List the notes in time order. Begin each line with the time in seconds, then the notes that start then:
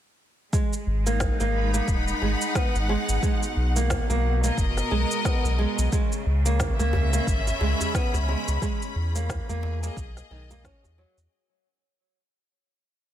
0.53 G#3, kick, shaker
0.73 shaker
0.87 G#1
1.06 A#3 D#4, shaker
1.20 kick, snare, shaker
1.40 G#1 A#3, shaker
1.54 B5
1.74 A#3 F#5, shaker
1.88 D#1, kick, shaker
2.08 shaker
2.22 G#1 G#3
2.42 shaker
2.55 B3, kick, snare, shaker
2.75 G#1, shaker
2.89 G#3
3.09 G#1, shaker
3.22 B2 G#3, kick, shaker
3.43 shaker
3.56 B1
3.76 A#3, shaker
3.90 kick, snare, shaker
4.10 B1 A#3, shaker
4.44 A#3 A#4 D#5, shaker
4.58 F#1, kick, shaker
4.77 snare, shaker
4.91 B1 G#3
5.11 shaker
5.25 B3, kick, snare, shaker
5.44 B1, shaker
5.59 G#3
5.78 B1, shaker
5.92 C#3 G#3, kick, shaker
6.12 shaker
6.26 C#2
6.46 A#3, shaker
6.60 kick, snare, shaker
6.75 E5
6.79 C#2 A#3, shaker
6.84 C#4
6.93 djembe slap, djembe bass
7.13 A#3 B5, shaker
7.27 G#1, kick, shaker
7.47 djembe slap, shaker
7.61 C#2 G#3, djembe slap
7.80 djembe tone, shaker
7.95 B3, kick, snare, shaker
8.14 C#2, djembe slap, shaker
8.29 G#3
8.48 C#2, djembe slap, shaker
8.62 G#3, kick, shaker
8.82 shaker
8.96 E2
9.15 A#3, shaker
9.29 kick, snare, shaker
9.49 E2 A#3 G#4, shaker
9.63 djembe slap, djembe tone
9.83 A#3 D#5, shaker
9.97 B1, kick, djembe slap, shaker
10.17 snare, shaker
10.31 B1 D#3
10.50 A#3, djembe tone, shaker
10.64 C#4, kick, snare, shaker
10.84 E2, djembe tone, shaker
10.98 F#3
11.17 E2, djembe slap, shaker